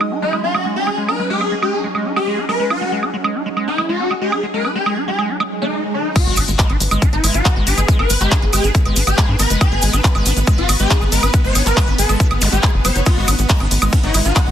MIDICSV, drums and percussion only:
0, 0, Header, 1, 2, 480
1, 0, Start_track
1, 0, Key_signature, 5, "minor"
1, 0, Tempo, 431655
1, 1086, Time_signature, 4, 2, 24, 8
1, 16137, End_track
2, 0, Start_track
2, 0, Title_t, "Drums"
2, 7, Note_on_c, 9, 76, 83
2, 118, Note_off_c, 9, 76, 0
2, 367, Note_on_c, 9, 76, 43
2, 478, Note_off_c, 9, 76, 0
2, 606, Note_on_c, 9, 76, 79
2, 718, Note_off_c, 9, 76, 0
2, 967, Note_on_c, 9, 76, 41
2, 1078, Note_off_c, 9, 76, 0
2, 1207, Note_on_c, 9, 76, 79
2, 1318, Note_off_c, 9, 76, 0
2, 1567, Note_on_c, 9, 76, 42
2, 1678, Note_off_c, 9, 76, 0
2, 1807, Note_on_c, 9, 76, 83
2, 1918, Note_off_c, 9, 76, 0
2, 2167, Note_on_c, 9, 76, 39
2, 2278, Note_off_c, 9, 76, 0
2, 2406, Note_on_c, 9, 76, 80
2, 2518, Note_off_c, 9, 76, 0
2, 2767, Note_on_c, 9, 76, 40
2, 2878, Note_off_c, 9, 76, 0
2, 3007, Note_on_c, 9, 76, 78
2, 3118, Note_off_c, 9, 76, 0
2, 3367, Note_on_c, 9, 76, 39
2, 3478, Note_off_c, 9, 76, 0
2, 3607, Note_on_c, 9, 76, 82
2, 3718, Note_off_c, 9, 76, 0
2, 3967, Note_on_c, 9, 76, 41
2, 4078, Note_off_c, 9, 76, 0
2, 4207, Note_on_c, 9, 76, 81
2, 4318, Note_off_c, 9, 76, 0
2, 4567, Note_on_c, 9, 76, 39
2, 4678, Note_off_c, 9, 76, 0
2, 4807, Note_on_c, 9, 76, 81
2, 4918, Note_off_c, 9, 76, 0
2, 5167, Note_on_c, 9, 76, 37
2, 5278, Note_off_c, 9, 76, 0
2, 5407, Note_on_c, 9, 76, 77
2, 5518, Note_off_c, 9, 76, 0
2, 5767, Note_on_c, 9, 76, 40
2, 5878, Note_off_c, 9, 76, 0
2, 6006, Note_on_c, 9, 76, 76
2, 6118, Note_off_c, 9, 76, 0
2, 6847, Note_on_c, 9, 36, 116
2, 6847, Note_on_c, 9, 42, 84
2, 6847, Note_on_c, 9, 49, 108
2, 6847, Note_on_c, 9, 76, 38
2, 6850, Note_on_c, 9, 82, 38
2, 6958, Note_off_c, 9, 36, 0
2, 6958, Note_off_c, 9, 42, 0
2, 6958, Note_off_c, 9, 49, 0
2, 6958, Note_off_c, 9, 76, 0
2, 6961, Note_off_c, 9, 82, 0
2, 7077, Note_on_c, 9, 82, 88
2, 7087, Note_on_c, 9, 46, 105
2, 7087, Note_on_c, 9, 76, 73
2, 7188, Note_off_c, 9, 82, 0
2, 7198, Note_off_c, 9, 46, 0
2, 7198, Note_off_c, 9, 76, 0
2, 7207, Note_on_c, 9, 42, 55
2, 7207, Note_on_c, 9, 82, 50
2, 7318, Note_off_c, 9, 42, 0
2, 7318, Note_off_c, 9, 82, 0
2, 7325, Note_on_c, 9, 82, 42
2, 7327, Note_on_c, 9, 36, 123
2, 7327, Note_on_c, 9, 39, 126
2, 7327, Note_on_c, 9, 42, 83
2, 7436, Note_off_c, 9, 82, 0
2, 7438, Note_off_c, 9, 36, 0
2, 7438, Note_off_c, 9, 39, 0
2, 7438, Note_off_c, 9, 42, 0
2, 7447, Note_on_c, 9, 42, 40
2, 7447, Note_on_c, 9, 76, 39
2, 7558, Note_off_c, 9, 42, 0
2, 7558, Note_off_c, 9, 76, 0
2, 7567, Note_on_c, 9, 46, 98
2, 7572, Note_on_c, 9, 82, 97
2, 7678, Note_off_c, 9, 46, 0
2, 7683, Note_off_c, 9, 82, 0
2, 7687, Note_on_c, 9, 42, 57
2, 7687, Note_on_c, 9, 76, 81
2, 7687, Note_on_c, 9, 82, 54
2, 7798, Note_off_c, 9, 42, 0
2, 7798, Note_off_c, 9, 76, 0
2, 7799, Note_off_c, 9, 82, 0
2, 7807, Note_on_c, 9, 36, 124
2, 7807, Note_on_c, 9, 42, 85
2, 7807, Note_on_c, 9, 82, 38
2, 7918, Note_off_c, 9, 36, 0
2, 7918, Note_off_c, 9, 42, 0
2, 7918, Note_off_c, 9, 82, 0
2, 7927, Note_on_c, 9, 42, 39
2, 8038, Note_off_c, 9, 42, 0
2, 8047, Note_on_c, 9, 46, 111
2, 8047, Note_on_c, 9, 76, 40
2, 8054, Note_on_c, 9, 82, 89
2, 8158, Note_off_c, 9, 46, 0
2, 8158, Note_off_c, 9, 76, 0
2, 8164, Note_off_c, 9, 82, 0
2, 8164, Note_on_c, 9, 82, 55
2, 8167, Note_on_c, 9, 42, 56
2, 8276, Note_off_c, 9, 82, 0
2, 8278, Note_off_c, 9, 42, 0
2, 8287, Note_on_c, 9, 36, 122
2, 8287, Note_on_c, 9, 39, 124
2, 8287, Note_on_c, 9, 42, 83
2, 8287, Note_on_c, 9, 76, 76
2, 8289, Note_on_c, 9, 82, 41
2, 8398, Note_off_c, 9, 36, 0
2, 8398, Note_off_c, 9, 39, 0
2, 8398, Note_off_c, 9, 42, 0
2, 8398, Note_off_c, 9, 76, 0
2, 8400, Note_off_c, 9, 82, 0
2, 8527, Note_on_c, 9, 46, 92
2, 8531, Note_on_c, 9, 82, 86
2, 8638, Note_off_c, 9, 46, 0
2, 8643, Note_off_c, 9, 82, 0
2, 8647, Note_on_c, 9, 42, 57
2, 8647, Note_on_c, 9, 76, 39
2, 8647, Note_on_c, 9, 82, 50
2, 8758, Note_off_c, 9, 42, 0
2, 8758, Note_off_c, 9, 76, 0
2, 8758, Note_off_c, 9, 82, 0
2, 8767, Note_on_c, 9, 36, 126
2, 8767, Note_on_c, 9, 42, 86
2, 8768, Note_on_c, 9, 82, 41
2, 8878, Note_off_c, 9, 36, 0
2, 8878, Note_off_c, 9, 42, 0
2, 8879, Note_off_c, 9, 82, 0
2, 8887, Note_on_c, 9, 76, 76
2, 8998, Note_off_c, 9, 76, 0
2, 9005, Note_on_c, 9, 82, 99
2, 9007, Note_on_c, 9, 46, 109
2, 9116, Note_off_c, 9, 82, 0
2, 9118, Note_off_c, 9, 46, 0
2, 9125, Note_on_c, 9, 82, 54
2, 9127, Note_on_c, 9, 39, 38
2, 9127, Note_on_c, 9, 42, 52
2, 9236, Note_off_c, 9, 82, 0
2, 9238, Note_off_c, 9, 39, 0
2, 9238, Note_off_c, 9, 42, 0
2, 9243, Note_on_c, 9, 82, 42
2, 9247, Note_on_c, 9, 36, 127
2, 9247, Note_on_c, 9, 39, 127
2, 9247, Note_on_c, 9, 42, 82
2, 9247, Note_on_c, 9, 76, 39
2, 9354, Note_off_c, 9, 82, 0
2, 9358, Note_off_c, 9, 36, 0
2, 9358, Note_off_c, 9, 39, 0
2, 9358, Note_off_c, 9, 42, 0
2, 9358, Note_off_c, 9, 76, 0
2, 9367, Note_on_c, 9, 42, 39
2, 9478, Note_off_c, 9, 42, 0
2, 9487, Note_on_c, 9, 46, 97
2, 9487, Note_on_c, 9, 76, 77
2, 9489, Note_on_c, 9, 82, 102
2, 9598, Note_off_c, 9, 46, 0
2, 9598, Note_off_c, 9, 76, 0
2, 9600, Note_off_c, 9, 82, 0
2, 9607, Note_on_c, 9, 42, 55
2, 9610, Note_on_c, 9, 82, 53
2, 9718, Note_off_c, 9, 42, 0
2, 9721, Note_off_c, 9, 82, 0
2, 9727, Note_on_c, 9, 36, 127
2, 9727, Note_on_c, 9, 42, 82
2, 9727, Note_on_c, 9, 82, 39
2, 9838, Note_off_c, 9, 36, 0
2, 9838, Note_off_c, 9, 42, 0
2, 9838, Note_off_c, 9, 82, 0
2, 9847, Note_on_c, 9, 42, 37
2, 9847, Note_on_c, 9, 76, 40
2, 9958, Note_off_c, 9, 42, 0
2, 9958, Note_off_c, 9, 76, 0
2, 9965, Note_on_c, 9, 82, 105
2, 9967, Note_on_c, 9, 46, 116
2, 10076, Note_off_c, 9, 82, 0
2, 10078, Note_off_c, 9, 46, 0
2, 10087, Note_on_c, 9, 42, 54
2, 10087, Note_on_c, 9, 76, 74
2, 10087, Note_on_c, 9, 82, 54
2, 10198, Note_off_c, 9, 42, 0
2, 10198, Note_off_c, 9, 76, 0
2, 10199, Note_off_c, 9, 82, 0
2, 10207, Note_on_c, 9, 36, 124
2, 10207, Note_on_c, 9, 39, 125
2, 10207, Note_on_c, 9, 42, 81
2, 10209, Note_on_c, 9, 82, 39
2, 10318, Note_off_c, 9, 36, 0
2, 10318, Note_off_c, 9, 39, 0
2, 10318, Note_off_c, 9, 42, 0
2, 10321, Note_off_c, 9, 82, 0
2, 10447, Note_on_c, 9, 46, 96
2, 10447, Note_on_c, 9, 76, 39
2, 10447, Note_on_c, 9, 82, 92
2, 10558, Note_off_c, 9, 46, 0
2, 10558, Note_off_c, 9, 76, 0
2, 10558, Note_off_c, 9, 82, 0
2, 10566, Note_on_c, 9, 82, 58
2, 10567, Note_on_c, 9, 42, 56
2, 10677, Note_off_c, 9, 82, 0
2, 10678, Note_off_c, 9, 42, 0
2, 10687, Note_on_c, 9, 36, 127
2, 10687, Note_on_c, 9, 42, 80
2, 10687, Note_on_c, 9, 76, 79
2, 10687, Note_on_c, 9, 82, 40
2, 10798, Note_off_c, 9, 36, 0
2, 10798, Note_off_c, 9, 42, 0
2, 10798, Note_off_c, 9, 76, 0
2, 10799, Note_off_c, 9, 82, 0
2, 10918, Note_on_c, 9, 82, 94
2, 10927, Note_on_c, 9, 46, 113
2, 11030, Note_off_c, 9, 82, 0
2, 11038, Note_off_c, 9, 46, 0
2, 11044, Note_on_c, 9, 82, 56
2, 11046, Note_on_c, 9, 42, 51
2, 11046, Note_on_c, 9, 76, 40
2, 11156, Note_off_c, 9, 82, 0
2, 11158, Note_off_c, 9, 42, 0
2, 11158, Note_off_c, 9, 76, 0
2, 11166, Note_on_c, 9, 82, 45
2, 11167, Note_on_c, 9, 36, 127
2, 11167, Note_on_c, 9, 39, 125
2, 11167, Note_on_c, 9, 42, 78
2, 11277, Note_off_c, 9, 82, 0
2, 11278, Note_off_c, 9, 36, 0
2, 11278, Note_off_c, 9, 39, 0
2, 11278, Note_off_c, 9, 42, 0
2, 11287, Note_on_c, 9, 42, 37
2, 11287, Note_on_c, 9, 76, 77
2, 11398, Note_off_c, 9, 42, 0
2, 11398, Note_off_c, 9, 76, 0
2, 11407, Note_on_c, 9, 46, 100
2, 11409, Note_on_c, 9, 82, 96
2, 11518, Note_off_c, 9, 46, 0
2, 11521, Note_off_c, 9, 82, 0
2, 11527, Note_on_c, 9, 42, 52
2, 11530, Note_on_c, 9, 82, 57
2, 11638, Note_off_c, 9, 42, 0
2, 11641, Note_off_c, 9, 82, 0
2, 11641, Note_on_c, 9, 82, 45
2, 11647, Note_on_c, 9, 36, 127
2, 11647, Note_on_c, 9, 42, 76
2, 11647, Note_on_c, 9, 76, 39
2, 11752, Note_off_c, 9, 82, 0
2, 11758, Note_off_c, 9, 36, 0
2, 11758, Note_off_c, 9, 42, 0
2, 11758, Note_off_c, 9, 76, 0
2, 11767, Note_on_c, 9, 42, 37
2, 11878, Note_off_c, 9, 42, 0
2, 11887, Note_on_c, 9, 46, 115
2, 11887, Note_on_c, 9, 76, 83
2, 11888, Note_on_c, 9, 82, 95
2, 11998, Note_off_c, 9, 46, 0
2, 11998, Note_off_c, 9, 76, 0
2, 11998, Note_off_c, 9, 82, 0
2, 11998, Note_on_c, 9, 82, 54
2, 12007, Note_on_c, 9, 42, 51
2, 12109, Note_off_c, 9, 82, 0
2, 12118, Note_off_c, 9, 42, 0
2, 12126, Note_on_c, 9, 82, 43
2, 12127, Note_on_c, 9, 36, 124
2, 12127, Note_on_c, 9, 39, 123
2, 12127, Note_on_c, 9, 42, 79
2, 12238, Note_off_c, 9, 36, 0
2, 12238, Note_off_c, 9, 39, 0
2, 12238, Note_off_c, 9, 42, 0
2, 12238, Note_off_c, 9, 82, 0
2, 12247, Note_on_c, 9, 76, 39
2, 12358, Note_off_c, 9, 76, 0
2, 12367, Note_on_c, 9, 46, 98
2, 12370, Note_on_c, 9, 82, 92
2, 12478, Note_off_c, 9, 46, 0
2, 12481, Note_off_c, 9, 82, 0
2, 12485, Note_on_c, 9, 82, 51
2, 12487, Note_on_c, 9, 42, 53
2, 12487, Note_on_c, 9, 76, 79
2, 12596, Note_off_c, 9, 82, 0
2, 12598, Note_off_c, 9, 42, 0
2, 12598, Note_off_c, 9, 76, 0
2, 12601, Note_on_c, 9, 82, 46
2, 12607, Note_on_c, 9, 36, 125
2, 12607, Note_on_c, 9, 42, 77
2, 12712, Note_off_c, 9, 82, 0
2, 12718, Note_off_c, 9, 36, 0
2, 12718, Note_off_c, 9, 42, 0
2, 12847, Note_on_c, 9, 46, 111
2, 12847, Note_on_c, 9, 76, 41
2, 12847, Note_on_c, 9, 82, 103
2, 12958, Note_off_c, 9, 46, 0
2, 12958, Note_off_c, 9, 76, 0
2, 12958, Note_off_c, 9, 82, 0
2, 12967, Note_on_c, 9, 39, 36
2, 12967, Note_on_c, 9, 42, 49
2, 12970, Note_on_c, 9, 82, 62
2, 13078, Note_off_c, 9, 39, 0
2, 13078, Note_off_c, 9, 42, 0
2, 13081, Note_off_c, 9, 82, 0
2, 13087, Note_on_c, 9, 36, 127
2, 13087, Note_on_c, 9, 39, 117
2, 13087, Note_on_c, 9, 42, 78
2, 13087, Note_on_c, 9, 76, 81
2, 13094, Note_on_c, 9, 82, 44
2, 13198, Note_off_c, 9, 36, 0
2, 13198, Note_off_c, 9, 39, 0
2, 13198, Note_off_c, 9, 42, 0
2, 13198, Note_off_c, 9, 76, 0
2, 13206, Note_off_c, 9, 82, 0
2, 13207, Note_on_c, 9, 42, 35
2, 13318, Note_off_c, 9, 42, 0
2, 13327, Note_on_c, 9, 46, 99
2, 13334, Note_on_c, 9, 82, 93
2, 13438, Note_off_c, 9, 46, 0
2, 13445, Note_off_c, 9, 82, 0
2, 13446, Note_on_c, 9, 82, 59
2, 13447, Note_on_c, 9, 42, 52
2, 13447, Note_on_c, 9, 76, 42
2, 13557, Note_off_c, 9, 82, 0
2, 13558, Note_off_c, 9, 42, 0
2, 13558, Note_off_c, 9, 76, 0
2, 13567, Note_on_c, 9, 36, 127
2, 13567, Note_on_c, 9, 42, 78
2, 13569, Note_on_c, 9, 82, 44
2, 13678, Note_off_c, 9, 36, 0
2, 13678, Note_off_c, 9, 42, 0
2, 13680, Note_off_c, 9, 82, 0
2, 13687, Note_on_c, 9, 42, 35
2, 13687, Note_on_c, 9, 76, 81
2, 13798, Note_off_c, 9, 42, 0
2, 13798, Note_off_c, 9, 76, 0
2, 13803, Note_on_c, 9, 82, 90
2, 13807, Note_on_c, 9, 46, 116
2, 13914, Note_off_c, 9, 82, 0
2, 13918, Note_off_c, 9, 46, 0
2, 13927, Note_on_c, 9, 42, 52
2, 13934, Note_on_c, 9, 82, 50
2, 14038, Note_off_c, 9, 42, 0
2, 14040, Note_off_c, 9, 82, 0
2, 14040, Note_on_c, 9, 82, 40
2, 14047, Note_on_c, 9, 36, 122
2, 14047, Note_on_c, 9, 39, 119
2, 14047, Note_on_c, 9, 42, 76
2, 14047, Note_on_c, 9, 76, 40
2, 14152, Note_off_c, 9, 82, 0
2, 14158, Note_off_c, 9, 36, 0
2, 14158, Note_off_c, 9, 39, 0
2, 14158, Note_off_c, 9, 42, 0
2, 14158, Note_off_c, 9, 76, 0
2, 14287, Note_on_c, 9, 46, 98
2, 14287, Note_on_c, 9, 76, 80
2, 14289, Note_on_c, 9, 82, 93
2, 14398, Note_off_c, 9, 46, 0
2, 14398, Note_off_c, 9, 76, 0
2, 14400, Note_off_c, 9, 82, 0
2, 14404, Note_on_c, 9, 82, 50
2, 14407, Note_on_c, 9, 42, 52
2, 14515, Note_off_c, 9, 82, 0
2, 14518, Note_off_c, 9, 42, 0
2, 14521, Note_on_c, 9, 82, 41
2, 14527, Note_on_c, 9, 36, 119
2, 14527, Note_on_c, 9, 42, 78
2, 14527, Note_on_c, 9, 51, 69
2, 14527, Note_on_c, 9, 76, 43
2, 14632, Note_off_c, 9, 82, 0
2, 14638, Note_off_c, 9, 36, 0
2, 14638, Note_off_c, 9, 42, 0
2, 14638, Note_off_c, 9, 51, 0
2, 14638, Note_off_c, 9, 76, 0
2, 14767, Note_on_c, 9, 46, 106
2, 14767, Note_on_c, 9, 76, 84
2, 14767, Note_on_c, 9, 82, 98
2, 14878, Note_off_c, 9, 46, 0
2, 14878, Note_off_c, 9, 76, 0
2, 14878, Note_off_c, 9, 82, 0
2, 14882, Note_on_c, 9, 82, 57
2, 14887, Note_on_c, 9, 42, 51
2, 14993, Note_off_c, 9, 82, 0
2, 14998, Note_off_c, 9, 42, 0
2, 15001, Note_on_c, 9, 82, 43
2, 15007, Note_on_c, 9, 36, 124
2, 15007, Note_on_c, 9, 39, 115
2, 15007, Note_on_c, 9, 42, 75
2, 15007, Note_on_c, 9, 51, 68
2, 15113, Note_off_c, 9, 82, 0
2, 15118, Note_off_c, 9, 36, 0
2, 15118, Note_off_c, 9, 39, 0
2, 15118, Note_off_c, 9, 42, 0
2, 15118, Note_off_c, 9, 51, 0
2, 15127, Note_on_c, 9, 42, 36
2, 15127, Note_on_c, 9, 76, 42
2, 15238, Note_off_c, 9, 42, 0
2, 15238, Note_off_c, 9, 76, 0
2, 15247, Note_on_c, 9, 46, 95
2, 15251, Note_on_c, 9, 82, 93
2, 15358, Note_off_c, 9, 46, 0
2, 15362, Note_off_c, 9, 82, 0
2, 15366, Note_on_c, 9, 82, 58
2, 15367, Note_on_c, 9, 42, 52
2, 15367, Note_on_c, 9, 76, 88
2, 15477, Note_off_c, 9, 82, 0
2, 15478, Note_off_c, 9, 42, 0
2, 15478, Note_off_c, 9, 76, 0
2, 15486, Note_on_c, 9, 82, 40
2, 15487, Note_on_c, 9, 36, 127
2, 15487, Note_on_c, 9, 42, 79
2, 15487, Note_on_c, 9, 51, 69
2, 15597, Note_off_c, 9, 82, 0
2, 15598, Note_off_c, 9, 36, 0
2, 15598, Note_off_c, 9, 42, 0
2, 15598, Note_off_c, 9, 51, 0
2, 15607, Note_on_c, 9, 42, 36
2, 15718, Note_off_c, 9, 42, 0
2, 15727, Note_on_c, 9, 46, 110
2, 15727, Note_on_c, 9, 76, 44
2, 15727, Note_on_c, 9, 82, 91
2, 15838, Note_off_c, 9, 46, 0
2, 15838, Note_off_c, 9, 76, 0
2, 15839, Note_off_c, 9, 82, 0
2, 15847, Note_on_c, 9, 42, 52
2, 15848, Note_on_c, 9, 82, 55
2, 15958, Note_off_c, 9, 42, 0
2, 15959, Note_off_c, 9, 82, 0
2, 15963, Note_on_c, 9, 82, 42
2, 15967, Note_on_c, 9, 36, 120
2, 15967, Note_on_c, 9, 39, 113
2, 15967, Note_on_c, 9, 42, 76
2, 15967, Note_on_c, 9, 51, 70
2, 15967, Note_on_c, 9, 76, 83
2, 16074, Note_off_c, 9, 82, 0
2, 16078, Note_off_c, 9, 36, 0
2, 16078, Note_off_c, 9, 39, 0
2, 16078, Note_off_c, 9, 42, 0
2, 16078, Note_off_c, 9, 51, 0
2, 16078, Note_off_c, 9, 76, 0
2, 16137, End_track
0, 0, End_of_file